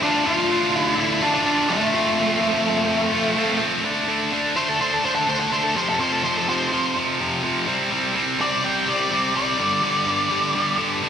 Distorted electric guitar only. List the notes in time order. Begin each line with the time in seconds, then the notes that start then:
0.01 D3 A3 D4 F4
0.49 D3 A3 D4 F4
1.21 A3 D4 F4
1.44 D3 A3 D4 F4
1.68 A3 D4 F4
1.92 F3 A3 C4 F4
2.40 F3 A3 C4 F4
3.11 A3 C4 F4
3.36 F3 A3 C4 F4
3.59 A3 C4 F4
3.84 D3 A3 D4
4.08 D3 A3 D4
4.32 D3 A3 D4
4.56 D3 A3 D4
4.80 D3 A3 D4
5.03 D3 A3 D4
5.27 D3 A3 D4
5.51 D3 A3 D4
5.75 F2 C3 F3
5.99 F2 C3 F3
6.24 F2 C3 F3
6.48 F2 C3 F3
6.72 F2 C3 F3
6.96 F2 C3 F3
7.20 F2 C3 F3
7.43 F2 C3 F3
7.67 C3 G3 C4
7.91 C3 G3 C4
8.15 C3 G3 C4
8.39 C3 G3 C4
8.64 C3 G3 C4
8.88 C3 G3 C4
9.11 C3 G3 C4
9.34 C3 G3 C4
9.58 G2 D3 G3
9.82 G2 D3 G3
10.07 G2 D3 G3
10.30 G2 D3 G3
10.55 G2 D3 G3
10.78 G2 D3 G3
11.03 G2 D3 G3